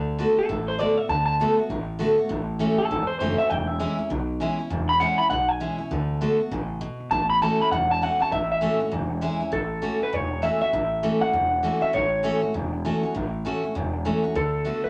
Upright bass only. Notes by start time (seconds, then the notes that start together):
Already playing: D2
0.38 muted upright bass stroke
0.49 A1
0.97 muted upright bass stroke
1.09 D2
1.58 muted upright bass stroke
1.69 A1
2.18 muted upright bass stroke
2.30 A1
2.78 muted upright bass stroke
2.90 G#1
3.08 muted upright bass stroke
3.20 F#1
3.39 muted upright bass stroke
3.51 E1
3.99 muted upright bass stroke
4.11 B1
4.59 muted upright bass stroke
4.70 E1
5.19 muted upright bass stroke
5.31 B1
5.79 muted upright bass stroke
5.91 D2
6.39 muted upright bass stroke
6.51 A1
7.00 muted upright bass stroke
7.12 A1
7.60 muted upright bass stroke
7.71 E1
8.20 muted upright bass stroke
8.32 A1
8.80 muted upright bass stroke
8.92 E1
9.41 muted upright bass stroke
9.53 A1
10.01 muted upright bass stroke
10.13 E1
10.62 muted upright bass stroke
10.73 A1
11.22 muted upright bass stroke
11.33 E1
11.83 muted upright bass stroke
11.95 A1
12.43 muted upright bass stroke
12.55 E1
13.03 muted upright bass stroke
13.16 A1
13.63 muted upright bass stroke
13.76 E1
14.24 muted upright bass stroke
14.35 D2
14.84 muted upright bass stroke